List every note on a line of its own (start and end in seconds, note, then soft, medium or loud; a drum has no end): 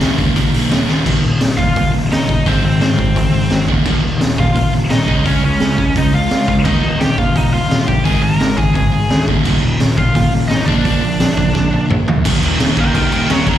0.00 0.29 C#2 medium
0.00 0.16 D#2 loud
0.00 0.17 A#2 medium
0.00 0.18 D#3 loud
0.00 snare loud
0.00 open hi-hat medium
0.17 0.35 D#2 medium
0.17 0.36 A#2 loud
0.17 0.37 D#3 loud
0.17 kick medium
0.17 open hi-hat medium
0.36 0.50 D#1 medium
0.36 0.52 D#2 medium
0.36 0.52 A#2 medium
0.36 0.53 D#3 medium
0.36 kick loud
0.36 open hi-hat medium
0.53 0.68 A#1 medium
0.53 0.69 D#2 medium
0.53 0.70 A#2 medium
0.53 0.71 D#3 loud
0.53 open hi-hat medium
0.70 0.86 D#1 medium
0.70 0.86 D#2 medium
0.70 0.87 A#2 medium
0.70 0.88 D#3 medium
0.70 snare loud
0.70 open hi-hat medium
0.87 1.03 D#1 medium
0.87 1.04 D#2 medium
0.87 1.04 A#2 medium
0.87 1.05 D#3 medium
0.87 snare medium
1.05 1.22 D#1 medium
1.05 1.21 D#2 medium
1.05 1.21 A#2 medium
1.05 1.23 D#3 loud
1.05 kick loud
1.05 crash loud
1.22 1.40 D#1 medium
1.22 1.39 D#2 medium
1.22 1.39 A#2 medium
1.41 1.57 D#1 medium
1.41 1.57 D#2 medium
1.41 1.57 A#2 medium
1.41 snare loud
1.41 open hi-hat medium
1.57 1.75 D#1 medium
1.57 1.74 D#2 medium
1.57 1.75 A#2 medium
1.57 1.91 F4 medium
1.57 1.90 F5 loud
1.57 kick medium
1.76 1.92 D#1 medium
1.76 1.92 D#2 medium
1.76 1.92 A#2 medium
1.76 kick loud
1.76 open hi-hat medium
1.94 2.10 D#1 medium
1.94 2.09 D#2 medium
1.94 2.09 A#2 medium
2.10 2.27 D#1 medium
2.10 2.26 D#2 medium
2.10 2.27 A#2 medium
2.10 2.44 D#4 medium
2.10 2.48 D#5 medium
2.10 snare loud
2.10 open hi-hat medium
2.28 2.45 D#1 medium
2.28 2.44 D#2 medium
2.28 2.44 A#2 medium
2.28 kick medium
2.45 2.62 G#1 medium
2.45 2.62 G#2 medium
2.45 2.62 D#3 medium
2.45 2.62 G#3 loud
2.45 2.63 C4 medium
2.45 2.63 C5 medium
2.45 kick loud
2.45 open hi-hat soft
2.63 2.80 G#1 medium
2.63 2.79 G#2 medium
2.63 2.79 D#3 medium
2.63 3.65 C4 medium
2.63 3.65 C5 medium
2.80 2.98 G#1 medium
2.80 2.96 G#2 medium
2.80 2.97 D#3 medium
2.80 snare loud
2.80 open hi-hat medium
2.98 3.15 G#1 medium
2.98 3.14 G#2 medium
2.98 3.14 D#3 medium
2.98 kick medium
3.15 3.32 G#1 medium
3.15 3.31 G#2 medium
3.15 3.32 D#3 medium
3.15 kick loud
3.15 open hi-hat medium
3.32 3.50 G#1 medium
3.32 3.49 G#2 medium
3.32 3.49 D#3 medium
3.50 3.67 G#1 medium
3.50 3.66 G#2 medium
3.50 3.66 D#3 medium
3.50 snare loud
3.50 open hi-hat medium
3.68 3.84 D#1 medium
3.68 3.82 D#2 medium
3.68 3.84 A#2 medium
3.68 3.84 D#3 medium
3.68 kick medium
3.84 4.02 D#1 medium
3.84 4.01 D#2 medium
3.84 4.02 A#2 medium
3.84 4.02 D#3 loud
3.84 kick loud
3.84 crash medium
4.03 4.19 D#1 medium
4.03 4.18 D#2 medium
4.03 4.19 A#2 medium
4.20 4.37 D#1 medium
4.20 4.36 D#2 medium
4.20 4.36 A#2 medium
4.20 snare loud
4.20 open hi-hat medium
4.38 4.54 D#1 medium
4.38 4.53 D#2 medium
4.38 4.53 A#2 medium
4.38 4.71 F4 medium
4.38 4.72 F5 loud
4.38 kick medium
4.55 4.72 D#1 medium
4.55 4.71 D#2 medium
4.55 4.71 A#2 medium
4.55 kick loud
4.55 open hi-hat medium
4.72 4.89 D#1 medium
4.72 4.89 D#2 medium
4.72 4.89 A#2 medium
4.90 5.07 D#1 medium
4.90 5.06 D#2 medium
4.90 5.07 A#2 medium
4.90 5.23 D#4 medium
4.90 5.26 D#5 medium
4.90 snare loud
4.90 open hi-hat medium
5.07 5.24 C#2 medium
5.07 5.23 C#3 medium
5.07 5.24 G#3 medium
5.07 5.25 C#4 medium
5.07 kick medium
5.25 5.42 C#2 medium
5.25 5.42 C#3 medium
5.25 5.42 G#3 medium
5.25 5.42 C#4 medium
5.25 5.43 C#4 loud
5.25 5.43 C#5 medium
5.25 kick loud
5.25 open hi-hat medium
5.43 5.60 C#2 medium
5.43 5.59 C#3 medium
5.43 5.59 G#3 medium
5.43 5.93 C#4 medium
5.43 5.93 C#5 medium
5.60 5.77 C#2 medium
5.60 5.77 C#3 medium
5.60 5.77 G#3 medium
5.60 snare loud
5.60 open hi-hat medium
5.78 5.94 C#2 medium
5.78 5.94 C#3 medium
5.78 5.95 G#3 medium
5.78 kick medium
5.96 6.12 C#2 medium
5.96 6.12 C#3 medium
5.96 6.12 G#3 medium
5.96 6.13 D#4 medium
5.96 6.14 D#5 medium
5.96 kick loud
5.96 open hi-hat medium
6.13 6.29 C#2 medium
6.13 6.29 C#3 medium
6.13 6.29 G#3 medium
6.13 6.47 F4 medium
6.13 6.47 F5 medium
6.30 6.47 C#2 medium
6.30 6.46 C#3 medium
6.30 6.46 G#3 medium
6.30 snare loud
6.30 open hi-hat medium
6.48 6.64 C#2 medium
6.48 6.64 C#3 medium
6.48 6.64 G#3 medium
6.48 6.53 F4 medium
6.48 6.54 F5 medium
6.48 kick medium
6.65 6.81 D#1 medium
6.65 6.82 D#2 medium
6.65 6.82 A#2 medium
6.65 6.83 D#3 medium
6.65 6.98 D#4 medium
6.65 7.00 D#5 medium
6.65 kick loud
6.65 crash medium
6.84 6.99 D#1 medium
6.84 6.99 D#2 medium
6.84 6.98 A#2 medium
7.00 7.17 D#1 medium
7.00 7.16 D#2 medium
7.00 7.16 A#2 medium
7.00 7.17 G4 medium
7.00 7.18 G5 loud
7.00 snare loud
7.00 open hi-hat medium
7.18 7.34 D#1 medium
7.18 7.34 D#2 medium
7.18 7.34 A#2 medium
7.18 7.35 F4 medium
7.18 7.36 F5 medium
7.18 kick medium
7.35 7.52 D#1 medium
7.35 7.51 D#2 medium
7.35 7.51 A#2 medium
7.35 7.52 D#4 medium
7.35 7.53 D#5 medium
7.35 kick loud
7.35 open hi-hat medium
7.52 7.69 D#1 medium
7.52 7.68 D#2 medium
7.52 7.69 A#2 medium
7.52 7.85 F4 medium
7.52 7.89 F5 loud
7.70 7.86 D#1 medium
7.70 7.86 D#2 medium
7.70 7.86 A#2 medium
7.70 snare loud
7.70 open hi-hat medium
7.88 8.05 A#1 medium
7.88 8.04 D#2 medium
7.88 8.03 A#2 medium
7.88 8.04 G4 medium
7.88 8.04 G5 medium
7.88 kick medium
8.03 8.21 G#1 medium
8.03 8.20 G#2 medium
8.03 8.21 D#3 medium
8.03 8.22 G#3 loud
8.03 8.21 G#4 medium
8.03 8.22 G#5 medium
8.03 kick medium
8.03 open hi-hat medium
8.22 8.39 G#1 medium
8.22 8.37 G#2 medium
8.22 8.38 D#3 medium
8.22 8.55 A#4 medium
8.22 8.57 A#5 medium
8.39 8.57 G#1 loud
8.39 8.55 G#2 medium
8.39 8.56 D#3 medium
8.39 snare loud
8.39 open hi-hat medium
8.56 8.74 G#1 medium
8.56 8.72 G#2 medium
8.56 8.72 D#3 medium
8.56 8.74 G#4 medium
8.56 8.73 G#5 loud
8.56 kick medium
8.73 8.91 G#1 medium
8.73 8.90 G#2 medium
8.73 8.90 D#3 medium
8.73 9.24 G#4 medium
8.73 9.24 G#5 loud
8.73 kick loud
8.73 open hi-hat medium
8.92 9.09 G#1 medium
8.92 9.08 G#2 medium
8.92 9.08 D#3 medium
9.09 9.29 D2 medium
9.09 9.25 G#2 medium
9.09 9.25 D#3 medium
9.09 snare loud
9.09 open hi-hat soft
9.27 9.44 D#1 medium
9.27 9.43 D#2 medium
9.27 9.43 A#2 medium
9.27 9.44 D#3 medium
9.27 kick medium
9.44 9.62 D#1 medium
9.44 9.61 D#2 medium
9.44 9.61 A#2 medium
9.44 9.62 D#3 medium
9.44 kick medium
9.44 crash medium
9.63 9.79 D#1 medium
9.63 9.78 D#2 medium
9.63 9.78 A#2 medium
9.79 9.97 D#1 medium
9.79 9.95 D#2 medium
9.79 9.96 A#2 medium
9.79 snare loud
9.79 open hi-hat medium
9.96 10.14 D#1 medium
9.96 10.12 D#2 medium
9.96 10.12 A#2 medium
9.96 10.30 F4 loud
9.96 10.30 F5 medium
9.96 kick medium
10.13 10.31 D#1 medium
10.13 10.30 D#2 medium
10.13 10.30 A#2 medium
10.13 kick loud
10.13 open hi-hat medium
10.31 10.49 D#1 medium
10.31 10.48 D#2 medium
10.31 10.48 A#2 medium
10.48 10.67 A1 medium
10.48 10.66 D#2 medium
10.48 10.65 A#2 medium
10.48 10.66 D#4 medium
10.48 10.65 D#5 medium
10.48 snare loud
10.48 open hi-hat medium
10.66 10.84 A#1 medium
10.66 10.82 A#2 medium
10.66 10.83 F3 medium
10.66 10.84 A#3 medium
10.66 11.86 D4 medium
10.66 11.85 D5 medium
10.66 kick medium
10.84 11.02 A#1 medium
10.84 11.00 A#2 medium
10.84 11.00 F3 loud
10.84 11.02 A#3 loud
10.84 kick loud
10.84 open hi-hat medium
11.01 11.19 A#1 medium
11.01 11.18 A#2 medium
11.01 11.18 F3 medium
11.20 11.37 A#1 medium
11.20 11.36 A#2 medium
11.20 11.36 F3 medium
11.20 snare loud
11.20 open hi-hat medium
11.37 11.54 A#1 medium
11.37 11.53 A#2 medium
11.37 11.54 F3 medium
11.37 kick medium
11.55 11.71 A#1 medium
11.55 11.71 A#2 medium
11.55 11.71 F3 medium
11.55 kick medium
11.55 snare medium
11.72 11.89 A#1 medium
11.72 11.87 A#2 medium
11.72 11.88 F3 medium
11.89 12.06 A#1 medium
11.89 12.05 A#2 medium
11.89 12.06 F3 medium
11.89 mid tom medium
12.07 12.24 D2 medium
12.07 12.23 A#2 medium
12.07 12.23 F3 medium
12.07 floor tom loud
12.24 12.38 D#1 medium
12.24 12.41 D#2 medium
12.24 12.41 A#2 loud
12.24 12.42 D#3 loud
12.24 kick loud
12.24 crash loud
12.24 crash medium
12.41 12.55 D#1 medium
12.41 12.57 D#2 medium
12.41 12.58 A#2 medium
12.41 12.59 D#3 medium
12.41 crash medium
12.57 12.73 D#1 loud
12.57 12.75 D#2 medium
12.57 12.75 A#2 medium
12.57 12.77 D#3 loud
12.57 snare loud
12.57 crash loud
12.76 12.90 D#1 loud
12.76 12.93 D#2 loud
12.76 12.93 A#2 loud
12.76 12.95 D#3 loud
12.76 12.93 A#4 medium
12.76 kick medium
12.76 crash medium
12.80 12.94 G5 loud
12.94 13.08 D#1 medium
12.94 13.10 D#2 medium
12.94 13.11 A#2 medium
12.94 13.11 D#3 medium
12.94 13.11 A#4 medium
12.94 13.12 G5 medium
12.94 kick loud
12.94 crash medium
13.11 13.25 D#1 medium
13.11 13.29 D#2 medium
13.11 13.29 A#2 medium
13.11 13.30 D#3 loud
13.11 13.31 A#4 medium
13.11 13.31 G5 medium
13.11 crash medium
13.29 13.42 D#1 medium
13.29 13.45 D#2 medium
13.29 13.46 A#2 loud
13.29 13.46 D#3 loud
13.29 13.47 C#5 medium
13.29 13.48 A#5 medium
13.29 snare loud
13.29 crash medium
13.47 13.58 D#1 medium
13.47 13.58 D#2 medium
13.47 13.58 A#2 medium
13.47 13.58 D#3 loud
13.47 13.58 C#5 medium
13.47 13.58 A#5 medium
13.47 kick medium
13.47 crash medium